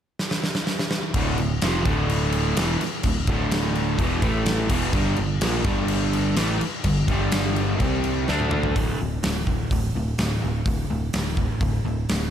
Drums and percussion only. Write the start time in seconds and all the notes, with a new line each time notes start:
0.19 snare
0.31 snare
0.44 snare
0.55 snare
0.67 snare
0.79 snare
0.91 snare
1.14 kick, crash
1.38 crash
1.61 snare, crash
1.85 kick, crash
2.09 crash
2.32 crash
2.57 snare, crash
2.81 snare, crash
3.03 kick, crash
3.27 kick, crash
3.51 snare, crash
3.75 crash
3.99 kick, crash
4.22 kick, crash
4.46 snare, crash
4.70 kick, snare, crash
4.93 kick, crash
5.16 crash
5.41 snare, crash
5.64 kick, crash
5.88 crash
6.13 crash
6.36 snare, crash
6.61 crash
6.84 kick, crash
7.08 kick, crash
7.32 snare, crash
7.56 crash
7.80 kick, crash
8.04 crash
8.28 snare
8.40 high tom
8.51 mid tom
8.63 floor tom
8.76 kick, open hi-hat
9.23 snare, open hi-hat
9.47 kick
9.71 kick, open hi-hat
10.18 snare, open hi-hat
10.66 kick, open hi-hat
11.13 snare, open hi-hat
11.37 kick
11.61 kick, open hi-hat
12.09 snare, open hi-hat